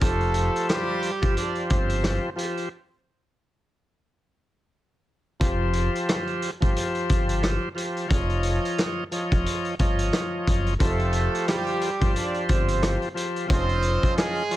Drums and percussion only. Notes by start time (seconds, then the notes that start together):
0.01 kick, closed hi-hat
0.20 closed hi-hat
0.34 closed hi-hat
0.56 closed hi-hat
0.69 cross-stick, snare, closed hi-hat
1.02 closed hi-hat
1.22 kick, closed hi-hat
1.37 closed hi-hat
1.55 closed hi-hat
1.70 kick, closed hi-hat
1.89 closed hi-hat
2.04 cross-stick, snare, closed hi-hat
2.38 closed hi-hat
2.57 closed hi-hat
5.41 kick, closed hi-hat
5.73 closed hi-hat
5.95 closed hi-hat
6.09 cross-stick, snare, closed hi-hat
6.27 closed hi-hat
6.42 closed hi-hat
6.62 kick, closed hi-hat
6.76 closed hi-hat
6.95 closed hi-hat
7.09 kick, closed hi-hat
7.29 closed hi-hat
7.43 cross-stick, snare, closed hi-hat
7.78 closed hi-hat
7.97 closed hi-hat
8.11 kick, closed hi-hat
8.29 closed hi-hat
8.43 closed hi-hat
8.65 closed hi-hat
8.78 cross-stick, snare, closed hi-hat
9.12 closed hi-hat
9.31 kick, closed hi-hat
9.46 closed hi-hat
9.64 closed hi-hat
9.79 kick, closed hi-hat
9.99 closed hi-hat
10.13 cross-stick, snare, closed hi-hat
10.47 kick, closed hi-hat
10.66 closed hi-hat
10.80 kick, closed hi-hat
10.99 closed hi-hat
11.13 closed hi-hat
11.35 closed hi-hat
11.48 cross-stick, snare, closed hi-hat
11.66 closed hi-hat
11.81 closed hi-hat
12.01 kick, closed hi-hat
12.16 closed hi-hat
12.34 closed hi-hat
12.49 kick, closed hi-hat
12.68 closed hi-hat
12.83 cross-stick, snare, closed hi-hat
13.02 closed hi-hat
13.17 closed hi-hat
13.36 closed hi-hat
13.50 kick, closed hi-hat
13.69 closed hi-hat
13.82 closed hi-hat
14.03 kick, closed hi-hat
14.17 cross-stick, snare, closed hi-hat
14.51 closed hi-hat